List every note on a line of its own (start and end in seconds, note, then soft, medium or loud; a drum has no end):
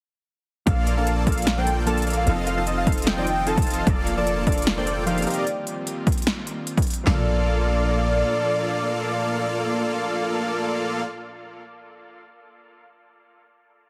0.66 2.25 A#1 medium
0.66 2.25 D3 medium
0.66 0.76 F3 medium
0.66 3.84 F3 medium
0.66 0.77 A#3 medium
0.66 0.95 A#3 loud
0.66 2.25 A#3 medium
0.66 0.77 D4 medium
0.66 0.95 F4 loud
0.66 5.23 F4 medium
0.66 1.06 A4 medium
0.66 0.95 A4 medium
0.66 5.23 A4 medium
0.66 0.77 A4 loud
0.66 0.95 D5 medium
0.66 0.95 F5 loud
0.66 0.82 F5 loud
0.66 kick loud
0.66 closed hi-hat medium
0.87 1.47 D5 medium
0.87 closed hi-hat medium
0.97 1.24 F3 medium
0.97 1.24 A#3 medium
0.97 1.25 A#3 loud
0.97 1.25 D4 medium
0.97 1.25 F4 medium
0.97 1.25 A4 medium
0.97 1.25 D5 medium
0.97 1.12 F5 loud
0.97 1.25 A5 loud
1.07 1.26 A4 medium
1.07 closed hi-hat medium
1.26 1.36 F3 loud
1.26 1.36 A#3 medium
1.26 1.55 A#3 medium
1.26 1.37 D4 medium
1.26 1.55 F4 medium
1.26 1.66 A4 medium
1.26 1.37 A4 loud
1.26 1.55 F5 loud
1.26 1.59 F5 loud
1.26 kick medium
1.26 closed hi-hat medium
1.32 closed hi-hat medium
1.38 closed hi-hat medium
1.42 closed hi-hat medium
1.47 2.06 D5 medium
1.47 snare loud
1.47 closed hi-hat medium
1.56 1.66 F3 medium
1.56 1.66 A#3 medium
1.56 1.85 A#3 medium
1.56 1.66 D4 medium
1.56 1.85 F4 medium
1.56 1.85 A4 medium
1.56 1.67 C5 loud
1.56 1.85 D5 medium
1.56 1.85 G5 medium
1.56 1.72 G5 loud
1.67 1.86 A4 medium
1.67 closed hi-hat medium
1.86 2.24 F3 loud
1.86 2.24 A#3 medium
1.86 2.05 A#3 medium
1.86 2.25 D4 medium
1.86 2.05 F4 medium
1.86 2.05 A4 medium
1.86 2.26 A4 medium
1.86 2.25 A4 loud
1.86 2.05 D5 medium
1.86 2.05 F5 loud
1.86 2.02 A5 loud
1.86 closed hi-hat medium
1.98 closed hi-hat medium
2.02 closed hi-hat medium
2.07 2.25 A#3 medium
2.07 2.25 F4 medium
2.07 2.25 A4 medium
2.07 2.25 D5 medium
2.07 2.73 D5 medium
2.07 2.25 F5 loud
2.07 closed hi-hat soft
2.10 closed hi-hat medium
2.13 closed hi-hat medium
2.17 2.32 F5 medium
2.26 3.85 F1 medium
2.26 3.85 D#3 medium
2.26 2.36 F3 medium
2.26 2.36 C4 medium
2.26 3.85 C4 medium
2.26 2.55 C4 loud
2.26 2.37 D#4 medium
2.26 2.55 F4 loud
2.26 2.46 A4 medium
2.26 2.55 A4 medium
2.26 2.37 A4 loud
2.26 2.55 D#5 loud
2.26 2.55 F5 loud
2.26 closed hi-hat medium
2.47 2.86 A4 medium
2.47 2.62 F5 loud
2.47 closed hi-hat medium
2.56 2.84 F3 medium
2.56 2.84 C4 medium
2.56 2.85 C4 medium
2.56 2.85 D#4 medium
2.56 2.85 F4 medium
2.56 2.85 A4 medium
2.56 2.85 D#5 medium
2.56 2.85 A5 loud
2.67 3.26 D#5 medium
2.67 closed hi-hat medium
2.77 2.92 F5 loud
2.86 2.96 F3 loud
2.86 2.96 C4 medium
2.86 3.15 C4 medium
2.86 2.97 D#4 medium
2.86 3.15 F4 medium
2.86 3.15 A4 medium
2.86 3.06 A4 medium
2.86 2.97 A4 loud
2.86 3.15 D#5 medium
2.86 3.15 F5 medium
2.86 kick medium
2.86 closed hi-hat medium
2.92 closed hi-hat medium
2.98 closed hi-hat medium
3.02 closed hi-hat medium
3.07 3.46 A4 medium
3.07 3.48 G5 loud
3.07 snare loud
3.07 closed hi-hat medium
3.16 3.26 F3 medium
3.16 3.26 C4 medium
3.16 3.45 C4 medium
3.16 3.26 D#4 medium
3.16 3.45 F4 medium
3.16 3.45 A4 medium
3.16 3.27 D5 loud
3.16 3.45 D#5 medium
3.16 3.45 G5 medium
3.27 3.93 D#5 medium
3.27 closed hi-hat medium
3.46 3.84 F3 loud
3.46 3.84 C4 medium
3.46 3.65 C4 medium
3.46 3.85 D#4 medium
3.46 3.65 F4 medium
3.46 3.65 A4 medium
3.46 3.66 A4 medium
3.46 3.85 A4 loud
3.46 3.65 D#5 medium
3.46 3.65 F5 loud
3.46 3.88 A5 loud
3.46 closed hi-hat medium
3.57 kick medium
3.57 closed hi-hat medium
3.62 closed hi-hat medium
3.67 3.85 C4 loud
3.67 3.85 F4 medium
3.67 3.85 A4 medium
3.67 4.06 A4 medium
3.67 3.85 D#5 medium
3.67 3.85 F5 loud
3.67 closed hi-hat medium
3.70 closed hi-hat medium
3.74 closed hi-hat medium
3.86 5.25 F1 medium
3.86 5.25 D3 medium
3.86 3.96 F3 medium
3.86 5.25 F3 medium
3.86 3.97 A#3 medium
3.86 5.25 A#3 medium
3.86 3.97 D4 medium
3.86 3.97 A4 loud
3.86 4.02 D5 loud
3.86 4.46 D5 medium
3.86 kick loud
3.86 closed hi-hat medium
4.07 4.27 A4 medium
4.07 closed hi-hat medium
4.17 4.44 F3 medium
4.17 4.44 A#3 medium
4.17 4.45 A#3 medium
4.17 4.45 D4 medium
4.17 4.45 F4 medium
4.17 4.45 A4 medium
4.17 4.32 D5 medium
4.17 4.45 D5 medium
4.17 4.45 A5 loud
4.27 4.66 A4 medium
4.27 closed hi-hat medium
4.46 4.56 F3 loud
4.46 4.57 A#3 medium
4.46 4.75 A#3 medium
4.46 4.57 D4 medium
4.46 4.75 F4 medium
4.46 4.75 A4 medium
4.46 4.57 A4 loud
4.46 5.06 D5 medium
4.46 4.75 D5 medium
4.46 4.62 D5 loud
4.46 4.75 F5 medium
4.46 kick medium
4.46 closed hi-hat soft
4.52 closed hi-hat medium
4.58 closed hi-hat medium
4.62 closed hi-hat medium
4.67 4.86 A4 medium
4.67 snare loud
4.67 closed hi-hat medium
4.77 4.86 F3 medium
4.77 4.86 A#3 medium
4.77 5.05 A#3 medium
4.77 4.86 D4 medium
4.77 5.05 F4 medium
4.77 5.04 A4 medium
4.77 4.87 C5 loud
4.77 4.92 D5 medium
4.77 5.05 D5 medium
4.77 5.05 G5 medium
4.87 7.06 A4 medium
4.87 closed hi-hat medium
5.06 5.44 F3 loud
5.06 5.25 A#3 medium
5.06 5.44 C4 medium
5.06 5.45 D#4 medium
5.06 5.25 F4 medium
5.06 5.45 G4 loud
5.06 5.25 A4 medium
5.06 5.25 D5 medium
5.06 6.92 D5 medium
5.06 5.25 F5 loud
5.06 5.22 F5 loud
5.06 closed hi-hat medium
5.18 closed hi-hat medium
5.22 closed hi-hat medium
5.27 7.05 D#3 medium
5.27 7.05 G3 medium
5.27 7.05 A#3 medium
5.27 5.45 C4 loud
5.27 7.05 C4 medium
5.27 7.05 F4 medium
5.27 5.45 G4 medium
5.27 7.62 G4 medium
5.27 5.45 A#4 medium
5.27 5.45 D#5 medium
5.27 5.45 F5 loud
5.27 closed hi-hat soft
5.30 closed hi-hat medium
5.34 closed hi-hat medium
5.38 5.47 D5 medium
5.47 closed hi-hat medium
5.67 closed hi-hat medium
5.87 closed hi-hat medium
6.07 kick medium
6.07 closed hi-hat soft
6.12 closed hi-hat medium
6.18 closed hi-hat soft
6.22 closed hi-hat medium
6.27 snare loud
6.27 closed hi-hat medium
6.47 closed hi-hat medium
6.67 closed hi-hat medium
6.77 kick medium
6.77 closed hi-hat medium
6.82 closed hi-hat medium
6.87 closed hi-hat soft
6.90 closed hi-hat medium
6.94 closed hi-hat medium
7.04 8.23 A#1 loud
7.04 11.03 A#2 medium
7.04 11.44 F3 medium
7.04 11.03 F3 medium
7.04 11.46 A#3 medium
7.04 11.03 A#3 medium
7.04 11.03 D4 medium
7.04 11.03 F4 medium
7.04 9.26 A4 loud
7.04 11.03 A4 medium
7.04 11.03 D5 medium
7.04 11.03 D5 loud
7.04 11.03 F5 loud
7.04 snare loud
7.04 clap medium
7.04 floor tom loud
7.08 11.48 D4 medium
7.08 11.50 A4 medium